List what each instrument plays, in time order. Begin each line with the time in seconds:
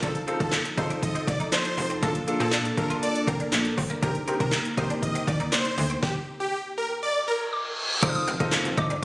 0.02 fm bass F1, analog synth pad F3 D#4 A4, grand piano C4 D#4 F4 A4, clean electric guitar D4, supersaw synth A4, kick, closed hi-hat
0.15 closed hi-hat
0.27 grand piano C4 D#4 F4 A4, clean electric guitar C4, closed hi-hat
0.40 fm bass F2, supersaw synth A4, muted clean electric guitar stroke, kick, closed hi-hat
0.52 muted clean electric guitar stroke, snare, clap, closed hi-hat
0.65 closed hi-hat
0.77 fm bass F1, grand piano C4 D#4 F4 A4, clean electric guitar D#4, supersaw synth C5, kick, closed hi-hat
0.90 clean electric guitar D4, closed hi-hat
1.03 supersaw synth D#5, kick, closed hi-hat
1.15 clean electric guitar C4, closed hi-hat
1.27 fm bass C2, supersaw synth D5, muted clean electric guitar stroke, kick, closed hi-hat
1.40 clean electric guitar D#4, closed hi-hat
1.52 clean electric guitar D4, supersaw synth C5, snare, clap, closed hi-hat
1.65 muted clean electric guitar stroke, closed hi-hat
1.78 fm bass F1, open hi-hat
1.90 clean electric guitar C4, closed hi-hat
2.02 fm bass A#1, grand piano A#3 D4 F4 A4, clean electric guitar A#3, analog synth pad A#3 D4 A4, supersaw synth A4, kick, closed hi-hat
2.15 closed hi-hat
2.27 grand piano A#3 D4 F4 A4, muted clean electric guitar stroke, closed hi-hat
2.40 fm bass A#2, clean electric guitar C4, supersaw synth A4, closed hi-hat
2.52 clean electric guitar D4, snare, clap, closed hi-hat
2.65 muted clean electric guitar stroke, closed hi-hat
2.77 fm bass A#1, grand piano A#3 D4 F4 A4, supersaw synth A#4, kick, closed hi-hat
2.90 clean electric guitar F4, closed hi-hat
3.03 supersaw synth D5, muted clean electric guitar stroke, closed hi-hat
3.15 closed hi-hat
3.27 fm bass C2, clean electric guitar C4, supersaw synth A#4, kick, closed hi-hat
3.40 clean electric guitar D4, closed hi-hat
3.52 fm bass A#1, muted clean electric guitar stroke, snare, clap, closed hi-hat
3.65 closed hi-hat
3.78 fm bass G1, clean electric guitar C4, kick, open hi-hat
3.90 clean electric guitar A#3, closed hi-hat
4.02 fm bass C2, analog synth pad C3 A#3 D#4, grand piano C4 D#4 G4 A#4, clean electric guitar D4, supersaw synth A#4, kick, closed hi-hat
4.15 closed hi-hat
4.27 grand piano C4 D#4 G4 A#4, clean electric guitar C4, closed hi-hat
4.40 fm bass C3, supersaw synth A#4, muted clean electric guitar stroke, kick, closed hi-hat
4.52 muted clean electric guitar stroke, snare, clap, closed hi-hat
4.65 closed hi-hat
4.77 fm bass C2, grand piano C4 D#4 G4 A#4, clean electric guitar D#4, supersaw synth C5, kick, closed hi-hat
4.90 clean electric guitar D4, closed hi-hat
5.03 supersaw synth D#5, kick, closed hi-hat
5.15 clean electric guitar C4, closed hi-hat
5.27 fm bass D#2, supersaw synth D5, muted clean electric guitar stroke, kick, closed hi-hat
5.40 clean electric guitar D#4, closed hi-hat
5.52 clean electric guitar D4, supersaw synth C5, snare, clap, closed hi-hat
5.65 muted clean electric guitar stroke, closed hi-hat
5.78 fm bass D2, open hi-hat
5.90 clean electric guitar C4, closed hi-hat
6.03 supersaw synth G4, kick, snare
6.40 supersaw synth G4
6.78 supersaw synth A#4
7.03 supersaw synth D5, reverse cymbal
7.28 supersaw synth A#4
7.53 synth pluck D6
8.02 fm bass F1, grand piano C4 D#4 F4 A4 C5, clean electric guitar D4, synth pluck D#6, kick, closed hi-hat, crash
8.09 synth pluck F6
8.15 synth pluck D#6, closed hi-hat
8.28 fm bass F1, clean electric guitar C4, synth pluck F6, closed hi-hat
8.40 grand piano C4 D#4 F4 A4 D#5, muted clean electric guitar stroke, kick, closed hi-hat
8.52 muted clean electric guitar stroke, snare, clap, closed hi-hat
8.65 fm bass F1, closed hi-hat
8.77 clean electric guitar D#4, synth pluck D6, kick, closed hi-hat
8.90 fm bass G1, clean electric guitar D4, closed hi-hat